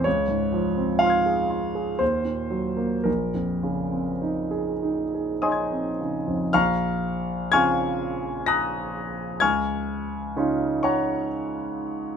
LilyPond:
\new Staff \with { instrumentName = "Grand piano" } { \time 3/4 \key bes \minor \tempo 4 = 62 << { des''4 <f'' c''' f''' aes'''>4 c''4 | bes'2 <des'' ees'' aes'' c''' ees''' aes'''>4 | <f'' bes'' des''' f'''>4 <aes'' des''' f''' aes'''>4 <bes'' ees''' ges''' bes'''>4 | <aes'' des''' f''' aes'''>4. <des'' ges'' bes'' des'''>8 r4 | } \\ { des,16 aes,16 f16 c'16 f'16 aes'16 f'16 aes'16 ees,16 bes,16 ges16 bes16 | bes,,16 f,16 des16 c'16 ees'16 aes'16 ees'16 aes'16 ees'16 c'16 des16 f,16 | bes,,4 <des c' f'>2 | des,4 <des des' ees' f'>2 | } >> }